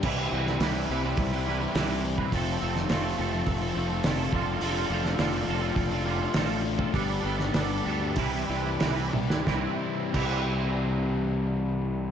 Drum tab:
CC |x---------------|----------------|----------------|----------------|
HH |----o---o---o---|o---o---o---o---|o---o---o---o---|o---o---o---o---|
SD |---oo-------o---|---oo-------o---|---oo-------o---|---oo-------o--o|
T1 |----------------|----------------|----------------|--------------o-|
BD |o-------o------o|o-------o-----o-|--------o------o|o-------o-------|

CC |----x-----------|
HH |----------------|
SD |o---------------|
T1 |----------------|
BD |o---o-----------|